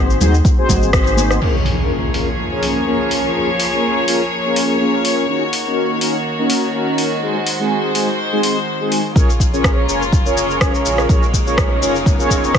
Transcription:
Already playing: G#1 C4 D#4 F#4 G#4 C5
0.10 shaker
0.20 D#2 C4 D#4 F#4 G#4 C5, high conga, low conga, shaker
0.34 shaker
0.44 kick, high conga, shaker
0.58 C4 D#4 F#4 G#4 C5
0.69 G#1, kick, high conga, low conga, shaker
0.83 shaker
0.93 C4 D#4 F#4 G#4 C5, kick, cross-stick, shaker
1.07 shaker
1.17 high conga, shaker
1.31 cross-stick, shaker
1.41 F3 A#3 C#4 F4 G#4 A#4 C#5, crash, impact
1.66 open hi-hat
1.79 A#3 C#4 F4 G#4 A#4
2.14 A#3 C#4 F4 G#4 A#4, open hi-hat
2.52 A#3 C#4 F4 G#4 A#4
2.63 open hi-hat
2.87 A#3 C#4 F4 G#4 A#4
3.11 open hi-hat
3.35 A#3 C#4 F4 G#4 A#4
3.60 open hi-hat
3.72 A#3 C#4 F4 G#4 A#4
4.08 A#3 C#4 F4 G#4 A#4, open hi-hat
4.45 A#3 C#4 F4 G#4 A#4
4.56 open hi-hat
4.80 A#3 C#4 F4 G#4 A#4
5.05 open hi-hat
5.28 D#3 A#3 C#4 D#4 F#4 A#4
5.53 open hi-hat
5.66 A#3 C#4 D#4 F#4 A#4
6.01 A#3 C#4 D#4 F#4 A#4, open hi-hat
6.39 A#3 C#4 D#4 F#4 A#4
6.50 open hi-hat
6.74 A#3 C#4 D#4 F#4 A#4
6.98 open hi-hat
7.22 G#3 C4 D#4 F#4 G#4 C5
7.46 open hi-hat
7.60 G#3 C4 D#4 F#4 G#4
7.95 G#3 C4 D#4 F#4 G#4, open hi-hat
8.32 G#3 C4 D#4 F#4 G#4
8.43 G#3 C4 D#4 F#4 G#4, open hi-hat
8.80 G#3 C4 D#4 F#4 G#4
8.92 open hi-hat
9.15 A#1 C#3 G#3 A#3 C#4 F4 G#4 A#4 C#5, kick, riser, shaker
9.30 shaker
9.40 kick, shaker
9.53 C#4 F4 G#4 A#4 C#5, shaker
9.64 kick, cross-stick, shaker
9.88 F1 C#4 F4 G#4 A#4 C#5, shaker
10.02 shaker
10.13 kick, shaker
10.25 C#4 F4 G#4 A#4 C#5, shaker
10.37 shaker
10.51 shaker
10.61 F1 C#4 F4 G#4 A#4 C#5, kick, cross-stick, shaker
10.75 shaker
10.85 A#1, shaker
10.98 cross-stick, shaker
11.09 A#1 C#4 D#4 F4 G#4 A#4 C#5, kick, shaker
11.23 shaker
11.33 kick, shaker
11.46 C#4 F4 G#4 A#4 C#5, shaker
11.58 kick, cross-stick, shaker
11.82 F1 C#4 F4 G#4 A#4 C#5, shaker
11.96 shaker
12.06 F1, kick, shaker
12.19 C#4 F4 G#4 A#4 C#5, shaker
12.30 kick, shaker
12.44 shaker
12.54 C#4 F4 G#4 A#4 C#5, kick, cross-stick, shaker

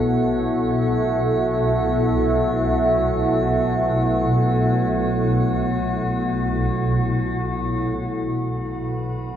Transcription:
Already playing: B1 B2 F#3 B3 E4 F#4 A4 E5
8.41 B1 B2 B3 B4

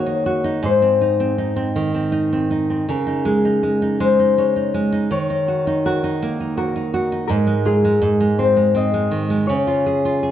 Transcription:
Already playing: D#3 A#3 F#4 G#4 A#4 C#5
0.06 D#4
0.26 F#4
0.44 D#4
0.62 G#2 C5
0.82 C4
1.01 D#4
1.20 C4
1.38 D#4
1.56 C4
1.76 D#3
1.94 C4
2.12 D#4
2.33 C4
2.51 D#4
2.70 C4
2.89 C#3 A#4
3.07 D#4
3.25 G#3 G#4
3.45 D#4
3.63 G#3
3.82 D#4
4.00 G#3 C5
4.19 D#4
4.38 G#3 C#5
4.56 D#4
4.74 G#3
4.92 D#4
5.11 D#3 C#5
5.30 D#4
5.48 F#4
5.67 D#4
5.86 F#4 A#4
6.04 D#4
6.22 A#3
6.40 D#4
6.57 F#4 A#4
6.76 D#4
6.94 F#4
7.12 D#4
7.28 G#2 A#4
7.47 G#3
7.65 F4 G#4
7.84 G#3
8.02 G#2
8.20 G#3
8.39 C4 C5
8.56 G#3
8.75 C4 D#5
8.94 G#3
9.11 D#3
9.30 G#3
9.47 C#3 C#5
9.67 F4
9.86 G#4
10.05 F4
10.23 G#4

